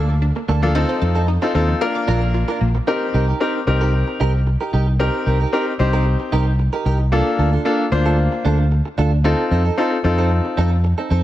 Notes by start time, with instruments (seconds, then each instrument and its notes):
Already playing: fingered electric bass D2, grand piano A#3 D4 F4 A4, clean electric guitar A#3
0.09 muted clean electric guitar stroke
0.22 synth arpeggio sound D4
0.36 synth arpeggio sound A#3, muted clean electric guitar stroke
0.48 fingered electric bass D2, synth arpeggio sound A3, clean electric guitar A#3 D4 A4
0.62 synth arpeggio sound F3, grand piano A#3 D4 F4 A4, muted clean electric guitar stroke
0.75 grand piano C4 D#4 F4 A4, clean electric guitar C4 D#4 A4, synth arpeggio sound D#5
0.89 synth arpeggio sound C5, muted clean electric guitar stroke
1.02 fingered electric bass F2, synth arpeggio sound A4, muted clean electric guitar stroke
1.15 clean electric guitar C4 D#4 A4
1.28 synth arpeggio sound D#4, muted clean electric guitar stroke
1.42 grand piano C4 D#4 F4 A4, synth arpeggio sound C4, clean electric guitar C4 D#4 A4
1.54 fingered electric bass D#2, clean electric guitar C4 D#4 A4, grand piano C4 D#4 F4 A4
1.69 synth arpeggio sound F3, muted clean electric guitar stroke
1.81 grand piano A#3 D4 F4 A#4, synth arpeggio sound F6, muted clean electric guitar stroke
1.95 synth arpeggio sound D6, muted clean electric guitar stroke
2.08 fingered electric bass A#1, clean electric guitar D4 F4 A#4, synth arpeggio sound A#5
2.22 muted clean electric guitar stroke
2.34 synth arpeggio sound F4, muted clean electric guitar stroke
2.48 synth arpeggio sound D4, clean electric guitar D4 F4 A#4
2.61 fingered electric bass A#1, synth arpeggio sound A#3, muted clean electric guitar stroke
2.75 synth arpeggio sound F3, muted clean electric guitar stroke
2.87 grand piano C4 D#4 G4 A#4, clean electric guitar D#4 G4 A#4
3.14 fingered electric bass C2, clean electric guitar D#4 G4 A#4
3.28 clean electric guitar D#4 G4 A#4
3.40 grand piano C4 D#4 G4 A#4, clean electric guitar D#4 G4 A#4
3.55 muted clean electric guitar stroke
3.67 fingered electric bass C2, grand piano C4 D#4 G4 A#4, muted clean electric guitar stroke
3.81 clean electric guitar D#4 G4 A#4
3.94 muted clean electric guitar stroke
4.08 muted clean electric guitar stroke
4.20 fingered electric bass C2, clean electric guitar D#4 G4 A#4
4.34 muted clean electric guitar stroke
4.47 muted clean electric guitar stroke
4.61 clean electric guitar D#4 G4 A#4
4.73 fingered electric bass C2, clean electric guitar D#4 G4 A#4
4.87 muted clean electric guitar stroke
4.99 grand piano C4 D#4 G4 A#4, clean electric guitar D#4 G4 A#4
5.26 fingered electric bass C2, clean electric guitar D#4 G4 A#4
5.40 clean electric guitar D#4 G4 A#4
5.53 grand piano C4 D#4 G4 A#4, clean electric guitar D#4 G4 A#4
5.67 muted clean electric guitar stroke
5.79 fingered electric bass C2, grand piano C4 D#4 G4 C5, muted clean electric guitar stroke
5.93 clean electric guitar D#4 G4 A#4
6.06 muted clean electric guitar stroke
6.20 muted clean electric guitar stroke
6.32 fingered electric bass C2, clean electric guitar D#4 G4 A#4
6.47 muted clean electric guitar stroke
6.59 muted clean electric guitar stroke
6.73 clean electric guitar D#4 G4 A#4
6.85 fingered electric bass C2, clean electric guitar D#4 G4 A#4
7.00 muted clean electric guitar stroke
7.12 grand piano A#3 D4 F4 A4, clean electric guitar D4 F4 A4
7.38 fingered electric bass D2, clean electric guitar D4 F4 A4
7.53 clean electric guitar D4 F4 A4
7.65 grand piano A#3 D4 F4 A4, clean electric guitar D4 F4 A4
7.79 muted clean electric guitar stroke
7.92 fingered electric bass D2, grand piano A#3 D4 F4 C5, muted clean electric guitar stroke
8.06 clean electric guitar D4 F4 A4
8.18 muted clean electric guitar stroke
8.32 muted clean electric guitar stroke
8.45 fingered electric bass D2, clean electric guitar D4 F4 A4
8.59 muted clean electric guitar stroke
8.71 muted clean electric guitar stroke
8.86 muted clean electric guitar stroke
8.98 fingered electric bass D2, clean electric guitar D4 F4 A4
9.12 muted clean electric guitar stroke
9.24 grand piano C4 D#4 F4 A4, clean electric guitar C4 D#4 A4
9.51 fingered electric bass F2, clean electric guitar C4 D#4 A4
9.65 clean electric guitar C4 D#4 A4
9.77 grand piano C4 D#4 F4 A4, clean electric guitar C4 D#4 A4
9.92 muted clean electric guitar stroke
10.04 fingered electric bass F2, grand piano C4 D#4 F4 A4, muted clean electric guitar stroke
10.18 clean electric guitar C4 D#4 A4
10.31 muted clean electric guitar stroke
10.45 muted clean electric guitar stroke
10.57 fingered electric bass F2, clean electric guitar C4 D#4 A4
10.71 muted clean electric guitar stroke
10.84 muted clean electric guitar stroke
10.98 clean electric guitar C4 D#4 A4
11.10 fingered electric bass F2, clean electric guitar C4 D#4 A4